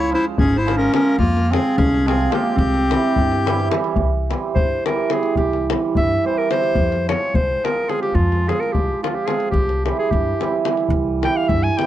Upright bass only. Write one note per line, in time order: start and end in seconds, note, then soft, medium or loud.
0.00 0.14 C#2 loud
0.39 0.86 G#1 medium
1.18 1.54 F2 medium
1.78 2.26 C2 loud
2.58 2.94 C2 loud
3.18 3.66 G2 medium
3.96 4.33 C2 medium
4.57 4.75 G2 medium
5.37 5.73 C2 medium
5.97 6.15 G2 medium
6.75 7.11 F2 medium
7.35 7.53 C2 medium
8.15 8.50 F2 medium
8.75 8.92 C2 medium
9.53 9.89 C2 medium
10.13 10.30 G2 medium
10.90 11.26 C2 loud
11.49 11.67 G2 medium